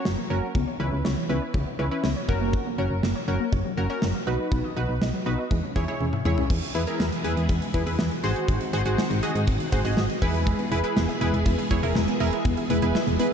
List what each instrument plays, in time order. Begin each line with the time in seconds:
Already playing: analog polysynth C#4 F#4 C#5
0.05 fm bass F#1, synth pluck F#3, snare
0.18 synth pluck A#3
0.30 fm bass F#1, analog polysynth C#4 F#4 A#4, synth pluck C#5
0.43 synth pluck F#3
0.55 fm bass C#2, synth pluck B3, kick
0.67 synth pluck C#5
0.80 fm bass C#2, synth pluck E3, analog polysynth C#4 E4 B4
0.92 fm bass C#2, synth pluck B3
1.05 fm bass C#2, synth pluck C#5, snare
1.17 synth pluck E3
1.29 fm bass C#2, synth pluck B3, analog polysynth C#4 E4 B4
1.42 synth pluck C#5
1.54 fm bass C#2, synth pluck E3, kick
1.67 synth pluck B3
1.79 fm bass C#2, analog polysynth C#4 E4 B4, synth pluck C#5
1.91 synth pluck E3, analog polysynth C#4 E4 B4
2.04 fm bass C#2, synth pluck B3, snare
2.16 synth pluck C#5
2.29 fm bass F#1, synth pluck F#3, analog polysynth C#4 F#4 A#4, kick
2.41 synth pluck A#3
2.53 synth pluck F#3, kick
2.66 synth pluck A#3
2.78 fm bass F#1, analog polysynth C#4 F#4 A#4, synth pluck C#5
2.90 fm bass F#1
3.03 fm bass F#1, synth pluck A#3, snare
3.15 synth pluck C#5
3.28 fm bass F#1, synth pluck F#3, analog polysynth C#4 F#4 A#4
3.40 synth pluck A#3
3.53 fm bass F#1, synth pluck C#5, kick
3.65 synth pluck F#3
3.77 fm bass F#1, synth pluck A#3, analog polysynth C#4 F#4 A#4
3.90 analog polysynth C#4 F#4 A#4, synth pluck C#5
4.02 fm bass F#1, synth pluck F#3, snare
4.14 synth pluck A#3
4.27 fm bass B1, analog polysynth D#4 F#4 B4, synth pluck D#5
4.39 synth pluck F#3
4.52 fm bass B1, synth pluck B3, kick
4.64 synth pluck D#5
4.76 fm bass B1, synth pluck F#3, analog polysynth D#4 F#4 B4
4.89 fm bass B1, synth pluck B3
5.01 fm bass B1, synth pluck D#5, snare
5.14 synth pluck F#3
5.26 fm bass B1, synth pluck B3, analog polysynth D#4 F#4 B4
5.38 synth pluck D#5
5.51 fm bass E2, synth pluck G#3, kick
5.63 synth pluck C#4
5.76 fm bass E2, analog polysynth E4 G#4 C#5, synth pluck E5, kick
5.88 synth pluck G#3, analog polysynth E4 G#4 C#5
6.00 fm bass E2, synth pluck C#4, high tom
6.13 synth pluck E5, mid tom
6.25 fm bass E2, synth pluck G#3, analog polysynth E4 G#4 C#5, mid tom
6.38 synth pluck C#4, floor tom
6.50 fm bass E2, string machine E3 G#3 B3 G#4, kick, crash
6.62 closed hi-hat
6.75 fm bass E2, analog polysynth E4 G#4 B4, closed hi-hat
6.87 analog polysynth E4 G#4 A#4, closed hi-hat
7.00 fm bass E2, snare
7.12 closed hi-hat
7.24 fm bass E2, analog polysynth E4 G#4 B4, closed hi-hat
7.37 fm bass E2, closed hi-hat
7.49 fm bass E2, kick, closed hi-hat
7.62 closed hi-hat
7.74 fm bass E2, analog polysynth E4 G#4 B4, kick, closed hi-hat
7.86 fm bass E2, analog polysynth E4 G#4 B4, closed hi-hat
7.99 fm bass E2, snare
8.11 closed hi-hat
8.23 fm bass G#1, string machine D#3 G#3 C4 F#4, analog polysynth F#4 G#4 C5, open hi-hat
8.36 closed hi-hat
8.48 fm bass G#1, kick, closed hi-hat
8.61 closed hi-hat
8.73 fm bass G#1, analog polysynth F#4 G#4 C5, closed hi-hat
8.85 fm bass G#1, analog polysynth F#4 G#4 C5, closed hi-hat
8.98 snare
9.10 fm bass G#1, closed hi-hat
9.23 analog polysynth F#4 G#4 D#5, closed hi-hat
9.35 fm bass G#2, closed hi-hat
9.47 fm bass G#1, kick, closed hi-hat
9.60 closed hi-hat
9.72 fm bass G#1, analog polysynth F#4 G#4 C5, kick, closed hi-hat
9.85 fm bass G#1, analog polysynth F#4 G#4 D#5, closed hi-hat
9.97 fm bass G#1, snare
10.10 closed hi-hat
10.22 fm bass E2, string machine E3 B3 G#4, analog polysynth E4 G#4 B4, kick, open hi-hat
10.34 closed hi-hat
10.47 synth pluck G#3, kick, closed hi-hat
10.59 synth pluck B3, closed hi-hat
10.72 fm bass E1, analog polysynth E4 G#4 B4, synth pluck E5, closed hi-hat
10.84 analog polysynth E4 G#4 B4, closed hi-hat
10.96 fm bass E1, synth pluck B3, snare
11.09 synth pluck E5, closed hi-hat
11.21 fm bass E1, synth pluck G#3, analog polysynth E4 G#4 B4, closed hi-hat
11.33 fm bass E1, synth pluck B3, closed hi-hat
11.46 fm bass E1, synth pluck E5, kick, closed hi-hat
11.58 synth pluck G#3, closed hi-hat
11.71 fm bass E1, synth pluck B3, analog polysynth E4 G#4 C#5, kick, closed hi-hat
11.83 fm bass E1, analog polysynth E4 G#4 A#4, synth pluck E5, closed hi-hat
11.95 fm bass E1, synth pluck G#3, snare
12.08 synth pluck B3, closed hi-hat
12.20 fm bass E1, analog polysynth E4 G#4 A#4, synth pluck E5, open hi-hat
12.33 synth pluck G#3, closed hi-hat
12.45 fm bass E1, synth pluck B3, kick, closed hi-hat
12.57 synth pluck E5, closed hi-hat
12.70 fm bass E1, synth pluck G#3, analog polysynth E4 G#4 B4, closed hi-hat
12.82 fm bass E1, synth pluck B3, analog polysynth E4 G#4 B4, closed hi-hat
12.95 synth pluck E5, snare
13.07 fm bass E1, synth pluck G#3, closed hi-hat
13.19 synth pluck B3, analog polysynth E4 G#4 B4, closed hi-hat